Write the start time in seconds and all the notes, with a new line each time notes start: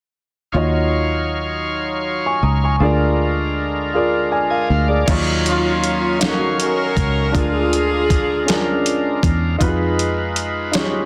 0.52 D#2 D#3 F#3 D#4 F4 F#4 C#5 F5
0.57 D#5
2.26 G#5 C#6
2.43 C#2 A#5 D#6
2.64 G#5 C#6
2.79 D2 D3 G#3 D4 F4 G#4 A4 A#4 D5
2.85 A#4
3.94 F4 G#4 A#4 D5
4.32 D5 G#5
4.50 A#4 F5 G#5
4.70 D2 F5
4.88 G#4 D5
5.06 D#2 D#3 F#3 D#4 F4 C#5 F5, kick, closed hi-hat, crash
5.10 C#5
5.46 A#3 C#4 F4, closed hi-hat
5.84 closed hi-hat
6.19 D#4 F#4 A4 F5, snare, closed hi-hat
6.26 F#4 A#4
6.60 C#4 F#4 A#4, closed hi-hat
6.97 C#2, kick, closed hi-hat
7.32 D2 D3 G#3 D4 F4 G#4 A#4, kick, closed hi-hat
7.36 F4 G#4
7.73 closed hi-hat
8.10 kick, closed hi-hat
8.46 C#4 F4 G#4 A#4, closed hi-hat
8.50 D4, snare
8.86 closed hi-hat
9.23 E2, kick, closed hi-hat
9.58 F2 G3 D#4 F4 F#4 B4, kick, closed hi-hat
9.68 G#3 G#4
9.99 closed hi-hat
10.36 closed hi-hat
10.72 D#4 F4 G4 C#5, snare, closed hi-hat
10.80 G#4